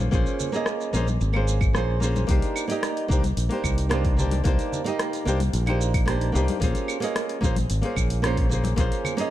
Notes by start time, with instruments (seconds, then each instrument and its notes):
Already playing: nylon-string guitar C5
0.00 high conga
0.11 fingered electric bass A#1, nylon-string guitar A#3 C#4 F4 G#4 C5, kick, shaker
0.26 shaker
0.40 low conga, shaker
0.52 nylon-string guitar A#3 C#4 F4 G#4 D#5, shaker
0.66 cross-stick, shaker
0.81 shaker
0.93 fingered electric bass A#1, nylon-string guitar A#3 C#4 F4 G#4 C5, shaker
1.08 high conga, shaker
1.21 fingered electric bass G#1, shaker
1.33 nylon-string guitar A#3 C#4 F4 G#4 C5, claves
1.48 shaker
1.61 kick, claves, shaker
1.73 fingered electric bass A#1, nylon-string guitar A#3 C#4 F4 G#4 C5, cross-stick, shaker
2.00 nylon-string guitar A#3 C#4 F4 G#4 C5, shaker
2.16 high conga, shaker
2.27 fingered electric bass C2, nylon-string guitar A#3 D4 D#4 G4 C5, kick, open hi-hat, shaker
2.42 open hi-hat, shaker
2.56 claves, shaker
2.68 nylon-string guitar A#3 D#4 G4 D5 D#5, open hi-hat, shaker
2.83 cross-stick, open hi-hat, shaker
2.97 open hi-hat
3.08 fingered electric bass C2, nylon-string guitar A#3 D4 D#4 G4 C5, kick, shaker
3.24 open hi-hat, high conga, shaker
3.37 fingered electric bass A#1, open hi-hat, shaker
3.49 nylon-string guitar A#3 D4 D#4 G4 C5, open hi-hat
3.64 fingered electric bass C2, kick, claves, shaker
3.78 open hi-hat, shaker
3.89 nylon-string guitar A#3 D4 D#4 G4 C5, cross-stick, open hi-hat, shaker
4.05 kick, open hi-hat
4.17 nylon-string guitar A#3 D4 D#4 G4 C5, low conga, shaker
4.31 open hi-hat, high conga, shaker
4.44 fingered electric bass C2, nylon-string guitar A#3 D4 D#4 G4 C5, kick, open hi-hat, shaker
4.59 open hi-hat, shaker
4.72 low conga, shaker
4.84 nylon-string guitar A#3 D#4 G4 D5 D#5, open hi-hat, shaker
4.99 cross-stick, open hi-hat, shaker
5.13 open hi-hat, shaker
5.25 fingered electric bass C2, nylon-string guitar A#3 D4 D#4 G4 C5, shaker
5.40 open hi-hat, high conga, shaker
5.53 fingered electric bass A#1, open hi-hat, shaker
5.66 nylon-string guitar A#3 D4 D#4 G4 C5, open hi-hat, claves
5.81 shaker
5.94 kick, open hi-hat, claves, shaker
6.05 nylon-string guitar A#3 D4 D#4 G4 C5, cross-stick, open hi-hat, shaker
6.21 open hi-hat
6.32 fingered electric bass C2, nylon-string guitar A#3 D4 D#4 G4 C5, shaker
6.48 open hi-hat, high conga, shaker
6.60 fingered electric bass A#1, nylon-string guitar A#3 C#4 F4 G#4 C5, kick, open hi-hat, shaker
6.75 open hi-hat, shaker
6.88 claves, shaker
7.00 nylon-string guitar A#3 C#4 F4 G#4 D#5, open hi-hat, shaker
7.16 cross-stick, open hi-hat, shaker
7.29 open hi-hat
7.41 fingered electric bass A#1, nylon-string guitar A#3 C#4 F4 G#4 C5, kick, shaker
7.56 open hi-hat, high conga, shaker
7.70 fingered electric bass G#1, open hi-hat, shaker
7.82 nylon-string guitar A#3 C#4 F4 G#4 C5, open hi-hat
7.96 fingered electric bass A#1, kick, claves, shaker
8.10 open hi-hat, shaker
8.22 nylon-string guitar A#3 C#4 F4 G#4 C5, cross-stick, open hi-hat, shaker
8.37 kick, open hi-hat
8.49 nylon-string guitar A#3 C#4 F4 G#4 C5, low conga, shaker
8.64 open hi-hat, high conga, shaker
8.76 fingered electric bass A#1, nylon-string guitar A#3 C#4 F4 G#4 C5, kick, open hi-hat, shaker
8.92 open hi-hat, shaker
9.05 low conga, claves, shaker
9.17 nylon-string guitar A#3 C#4 F4 G#4 D#5, open hi-hat, shaker